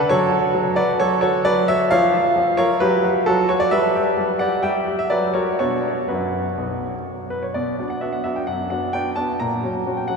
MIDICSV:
0, 0, Header, 1, 2, 480
1, 0, Start_track
1, 0, Key_signature, 2, "minor"
1, 0, Tempo, 453858
1, 114, Time_signature, 4, 2, 24, 8
1, 4917, Tempo, 485830
1, 7797, Tempo, 458365
1, 10522, End_track
2, 0, Start_track
2, 0, Title_t, "Grand piano"
2, 0, Program_c, 0, 0
2, 100, Note_on_c, 0, 73, 103
2, 109, Note_on_c, 0, 54, 82
2, 114, Note_on_c, 0, 69, 82
2, 339, Note_off_c, 0, 54, 0
2, 340, Note_on_c, 0, 66, 73
2, 574, Note_off_c, 0, 66, 0
2, 576, Note_on_c, 0, 54, 73
2, 783, Note_off_c, 0, 69, 0
2, 805, Note_on_c, 0, 74, 100
2, 811, Note_on_c, 0, 71, 78
2, 813, Note_off_c, 0, 54, 0
2, 814, Note_on_c, 0, 66, 73
2, 818, Note_off_c, 0, 73, 0
2, 956, Note_off_c, 0, 74, 0
2, 1041, Note_off_c, 0, 71, 0
2, 1053, Note_off_c, 0, 66, 0
2, 1053, Note_on_c, 0, 73, 105
2, 1062, Note_on_c, 0, 54, 66
2, 1064, Note_on_c, 0, 69, 80
2, 1265, Note_off_c, 0, 73, 0
2, 1281, Note_off_c, 0, 69, 0
2, 1281, Note_on_c, 0, 73, 95
2, 1296, Note_off_c, 0, 54, 0
2, 1297, Note_on_c, 0, 66, 68
2, 1297, Note_on_c, 0, 69, 78
2, 1508, Note_off_c, 0, 73, 0
2, 1524, Note_off_c, 0, 69, 0
2, 1531, Note_on_c, 0, 74, 111
2, 1533, Note_off_c, 0, 66, 0
2, 1539, Note_on_c, 0, 54, 73
2, 1543, Note_on_c, 0, 71, 81
2, 1753, Note_off_c, 0, 74, 0
2, 1767, Note_off_c, 0, 71, 0
2, 1775, Note_off_c, 0, 54, 0
2, 1778, Note_on_c, 0, 76, 109
2, 1789, Note_on_c, 0, 66, 71
2, 1791, Note_on_c, 0, 73, 72
2, 1996, Note_off_c, 0, 76, 0
2, 2010, Note_off_c, 0, 73, 0
2, 2016, Note_on_c, 0, 77, 114
2, 2019, Note_off_c, 0, 66, 0
2, 2026, Note_on_c, 0, 53, 80
2, 2027, Note_on_c, 0, 73, 86
2, 2254, Note_off_c, 0, 53, 0
2, 2256, Note_on_c, 0, 65, 74
2, 2487, Note_off_c, 0, 65, 0
2, 2494, Note_on_c, 0, 53, 64
2, 2694, Note_off_c, 0, 73, 0
2, 2722, Note_on_c, 0, 73, 105
2, 2726, Note_off_c, 0, 53, 0
2, 2731, Note_off_c, 0, 77, 0
2, 2732, Note_on_c, 0, 70, 80
2, 2735, Note_on_c, 0, 65, 73
2, 2956, Note_off_c, 0, 70, 0
2, 2964, Note_on_c, 0, 71, 99
2, 2968, Note_off_c, 0, 65, 0
2, 2968, Note_off_c, 0, 73, 0
2, 2975, Note_on_c, 0, 54, 77
2, 2978, Note_on_c, 0, 67, 74
2, 3208, Note_off_c, 0, 54, 0
2, 3217, Note_on_c, 0, 66, 64
2, 3257, Note_off_c, 0, 71, 0
2, 3426, Note_off_c, 0, 67, 0
2, 3447, Note_off_c, 0, 66, 0
2, 3450, Note_on_c, 0, 69, 98
2, 3461, Note_on_c, 0, 54, 76
2, 3463, Note_on_c, 0, 66, 71
2, 3684, Note_off_c, 0, 66, 0
2, 3689, Note_on_c, 0, 73, 94
2, 3695, Note_off_c, 0, 54, 0
2, 3697, Note_off_c, 0, 69, 0
2, 3700, Note_on_c, 0, 66, 74
2, 3806, Note_on_c, 0, 74, 97
2, 3816, Note_off_c, 0, 73, 0
2, 3927, Note_on_c, 0, 76, 104
2, 3935, Note_off_c, 0, 74, 0
2, 3936, Note_off_c, 0, 66, 0
2, 3937, Note_on_c, 0, 55, 68
2, 3940, Note_on_c, 0, 71, 75
2, 4175, Note_off_c, 0, 55, 0
2, 4182, Note_on_c, 0, 67, 62
2, 4410, Note_on_c, 0, 55, 61
2, 4418, Note_off_c, 0, 67, 0
2, 4620, Note_off_c, 0, 76, 0
2, 4626, Note_off_c, 0, 71, 0
2, 4646, Note_on_c, 0, 78, 90
2, 4654, Note_off_c, 0, 55, 0
2, 4659, Note_on_c, 0, 67, 63
2, 4663, Note_on_c, 0, 74, 75
2, 4878, Note_off_c, 0, 78, 0
2, 4893, Note_on_c, 0, 79, 83
2, 4895, Note_off_c, 0, 74, 0
2, 4902, Note_on_c, 0, 55, 63
2, 4903, Note_off_c, 0, 67, 0
2, 4904, Note_on_c, 0, 76, 66
2, 5110, Note_off_c, 0, 79, 0
2, 5134, Note_off_c, 0, 55, 0
2, 5144, Note_on_c, 0, 67, 55
2, 5234, Note_off_c, 0, 76, 0
2, 5252, Note_on_c, 0, 76, 85
2, 5361, Note_on_c, 0, 74, 91
2, 5369, Note_on_c, 0, 54, 62
2, 5373, Note_off_c, 0, 67, 0
2, 5374, Note_on_c, 0, 71, 70
2, 5375, Note_off_c, 0, 76, 0
2, 5584, Note_off_c, 0, 74, 0
2, 5595, Note_on_c, 0, 73, 73
2, 5599, Note_off_c, 0, 71, 0
2, 5603, Note_on_c, 0, 70, 63
2, 5605, Note_off_c, 0, 54, 0
2, 5607, Note_on_c, 0, 66, 55
2, 5824, Note_off_c, 0, 73, 0
2, 5836, Note_off_c, 0, 70, 0
2, 5844, Note_off_c, 0, 66, 0
2, 5848, Note_on_c, 0, 73, 80
2, 5856, Note_on_c, 0, 62, 49
2, 5859, Note_on_c, 0, 47, 55
2, 5859, Note_on_c, 0, 66, 67
2, 6202, Note_off_c, 0, 47, 0
2, 6249, Note_off_c, 0, 62, 0
2, 6314, Note_off_c, 0, 66, 0
2, 6334, Note_on_c, 0, 71, 58
2, 6343, Note_off_c, 0, 73, 0
2, 6347, Note_on_c, 0, 42, 51
2, 6348, Note_on_c, 0, 66, 48
2, 6685, Note_off_c, 0, 42, 0
2, 6821, Note_on_c, 0, 35, 49
2, 7062, Note_off_c, 0, 71, 0
2, 7162, Note_off_c, 0, 35, 0
2, 7514, Note_off_c, 0, 66, 0
2, 7539, Note_on_c, 0, 71, 63
2, 7660, Note_on_c, 0, 73, 54
2, 7668, Note_off_c, 0, 71, 0
2, 7777, Note_on_c, 0, 74, 67
2, 7787, Note_off_c, 0, 73, 0
2, 7787, Note_on_c, 0, 47, 55
2, 8032, Note_off_c, 0, 47, 0
2, 8036, Note_on_c, 0, 59, 37
2, 8038, Note_on_c, 0, 62, 38
2, 8042, Note_on_c, 0, 66, 40
2, 8119, Note_off_c, 0, 74, 0
2, 8148, Note_on_c, 0, 78, 57
2, 8216, Note_off_c, 0, 59, 0
2, 8217, Note_off_c, 0, 62, 0
2, 8219, Note_off_c, 0, 66, 0
2, 8264, Note_on_c, 0, 76, 52
2, 8275, Note_on_c, 0, 59, 36
2, 8279, Note_on_c, 0, 66, 42
2, 8280, Note_off_c, 0, 78, 0
2, 8281, Note_on_c, 0, 62, 38
2, 8384, Note_on_c, 0, 78, 53
2, 8398, Note_off_c, 0, 76, 0
2, 8454, Note_off_c, 0, 59, 0
2, 8456, Note_off_c, 0, 66, 0
2, 8458, Note_off_c, 0, 62, 0
2, 8503, Note_on_c, 0, 76, 65
2, 8514, Note_on_c, 0, 59, 38
2, 8518, Note_off_c, 0, 78, 0
2, 8519, Note_on_c, 0, 62, 40
2, 8526, Note_on_c, 0, 66, 44
2, 8629, Note_on_c, 0, 79, 51
2, 8636, Note_off_c, 0, 76, 0
2, 8692, Note_off_c, 0, 59, 0
2, 8696, Note_off_c, 0, 62, 0
2, 8700, Note_off_c, 0, 66, 0
2, 8745, Note_on_c, 0, 78, 72
2, 8750, Note_on_c, 0, 42, 41
2, 8759, Note_off_c, 0, 79, 0
2, 8971, Note_off_c, 0, 78, 0
2, 8988, Note_on_c, 0, 78, 64
2, 8991, Note_off_c, 0, 42, 0
2, 9000, Note_on_c, 0, 59, 40
2, 9003, Note_on_c, 0, 66, 42
2, 9005, Note_on_c, 0, 62, 38
2, 9175, Note_off_c, 0, 59, 0
2, 9177, Note_off_c, 0, 66, 0
2, 9178, Note_off_c, 0, 62, 0
2, 9212, Note_off_c, 0, 78, 0
2, 9229, Note_on_c, 0, 79, 82
2, 9236, Note_on_c, 0, 59, 41
2, 9244, Note_on_c, 0, 66, 45
2, 9245, Note_on_c, 0, 62, 44
2, 9378, Note_off_c, 0, 79, 0
2, 9413, Note_off_c, 0, 59, 0
2, 9418, Note_off_c, 0, 62, 0
2, 9418, Note_off_c, 0, 66, 0
2, 9464, Note_on_c, 0, 81, 77
2, 9472, Note_on_c, 0, 59, 41
2, 9477, Note_on_c, 0, 62, 38
2, 9485, Note_on_c, 0, 66, 45
2, 9650, Note_off_c, 0, 59, 0
2, 9653, Note_off_c, 0, 62, 0
2, 9659, Note_off_c, 0, 66, 0
2, 9715, Note_off_c, 0, 81, 0
2, 9715, Note_on_c, 0, 82, 75
2, 9727, Note_on_c, 0, 46, 55
2, 9957, Note_off_c, 0, 46, 0
2, 9965, Note_on_c, 0, 54, 37
2, 9971, Note_on_c, 0, 61, 40
2, 9975, Note_on_c, 0, 66, 42
2, 10074, Note_off_c, 0, 82, 0
2, 10135, Note_off_c, 0, 54, 0
2, 10139, Note_off_c, 0, 61, 0
2, 10141, Note_off_c, 0, 66, 0
2, 10202, Note_on_c, 0, 54, 41
2, 10207, Note_on_c, 0, 61, 41
2, 10209, Note_on_c, 0, 66, 45
2, 10316, Note_on_c, 0, 79, 53
2, 10372, Note_off_c, 0, 54, 0
2, 10375, Note_off_c, 0, 61, 0
2, 10376, Note_off_c, 0, 66, 0
2, 10428, Note_on_c, 0, 78, 81
2, 10436, Note_off_c, 0, 79, 0
2, 10443, Note_on_c, 0, 54, 42
2, 10447, Note_on_c, 0, 61, 43
2, 10447, Note_on_c, 0, 66, 44
2, 10522, Note_off_c, 0, 54, 0
2, 10522, Note_off_c, 0, 61, 0
2, 10522, Note_off_c, 0, 66, 0
2, 10522, Note_off_c, 0, 78, 0
2, 10522, End_track
0, 0, End_of_file